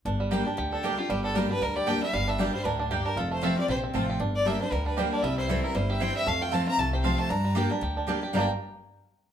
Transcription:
0.05 G1 G2 D4
0.20 G3
0.31 G3 A#3 D4 G4 D5 G5
0.45 D4 G4
0.57 D2 D3 G4
0.72 D4 A4
0.83 G3 A#3 D4 G4 D5 G5
0.97 D4 F4 G4
1.09 G1 G2 G3 G4
1.24 D4 A4
1.35 G3 A#3 D4 G4 A#4 D5 G5
1.49 D4 G4 B4
1.61 D2 G3 A#4
1.76 G4 D5
1.86 G3 A#3 D4 G4 D5 G5
2.02 G3 D4 G4 E5
2.13 G1 G2 G3 F5
2.28 D4 E5
2.38 G3 A#3 D4 G4 D5 G5
2.53 G3 D4 G4 C5
2.64 D2 A2 D4 A#4
2.79 D4
2.91 G2 A#3 G4 D5 G5
3.05 D4 A#4
3.16 F1 F2 F4 A4
3.31 A3 C5
3.41 F3 A3 C4 F4 G4 C5 E5 A5
3.56 C4 F4 D5
3.68 A#1 C3 G4 C5
3.84 C4
3.93 A1 F3 A3 C4 F4 C5 A5
4.10 G4
4.20 G1 G2 D4
4.35 D5
4.45 G3 A#3 D4 G4 D5 E5 G5
4.60 D4 G4 C5
4.71 D2 D3 G3 A#4
4.86 D4 B4
4.97 G3 A#3 D4 G4 C5 D5 G5
5.12 D4 D5
5.22 C2 C3 G3 E5
5.38 E4 C5
5.48 E3 G3 C4 E4 A4 C5 G5
5.62 C4 E4 A#4
5.74 G1 G2 G3 C5
5.90 G4 E5
6.00 E3 G3 C4 E4 C5 G5
6.15 G3 E5
6.26 F2 A3 F5
6.41 F4 G5
6.51 F3 A3 C4 F4 C5 A5
6.67 C4 F4 A#5
6.78 C2 C3 A3 A5
6.93 G4 C5
7.03 F3 A3 C4 F4 C5 F5 A5
7.18 A3 A5
7.30 G2 D4 A#5
7.44 G3
7.55 G3 A#3 D4 G4 D5 G5
7.69 D4 G4
7.81 D2 D3 G4
7.97 D4
8.07 G3 A#3 D4 G4 D5 G5
8.21 D4 G4
8.33 G1 G2 D3 G3 A#3 D4 G4 D5 G5 A#5
8.39 D4 G4

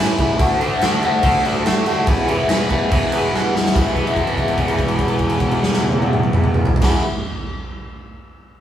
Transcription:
Already playing: A2 E3 A3 C#4
0.00 E3 E4
0.18 E2 A2 E3 A3 C#4 E4, kick, crash
0.39 D2 D3 A3 D4 F#4, kick, crash
0.61 D3 A3 D4 F#4, crash
0.81 D2 D3 A3 D4 F#4, snare, crash
1.03 D2 D3 A3 D4 F#4, crash
1.23 D2 D3 A3 D4 F#4, kick, crash
1.44 D2 D3 A3 D4 F#4, snare, crash
1.65 A2 D3 A3 D4 F#4, snare, crash
1.86 A2 D3 A3 D4 F#4, crash
2.07 E2 B2 E3 G#3 B3 E4, kick, crash
2.28 E2 B2 E3 G#3 B3 E4, crash
2.48 E2 B2 E3 G#3 B3 E4, snare, crash
2.69 E2 B2 E3 G#3 B3 E4, kick, crash
2.92 E2 B2 E3 G#3 B3 E4, kick, crash
3.12 E2 B2 E3 G#3 B3 E4, crash
3.33 E2 B2 E3 G#3 B3 E4, snare
3.54 E2 B2 E3 G#3 B3 E4, snare
3.66 snare
3.73 E2 B2 E3 G#3 B3, kick, crash
3.77 E4
3.96 kick, crash
4.07 crash
4.16 kick, crash
4.27 crash
4.37 kick, crash
4.48 crash
4.58 kick, crash
4.68 crash
4.79 kick, crash
4.88 crash
4.99 kick, crash
5.08 crash
5.19 kick, crash
5.29 crash
5.40 kick, crash
5.51 crash
5.63 snare
5.73 snare
5.83 high tom
5.92 high tom
6.02 high tom
6.13 mid tom
6.23 mid tom
6.33 mid tom
6.44 mid tom
6.54 mid tom
6.65 floor tom
6.76 floor tom
6.82 E2 B2 E3 G#3 B3, kick, snare, crash
6.86 E4

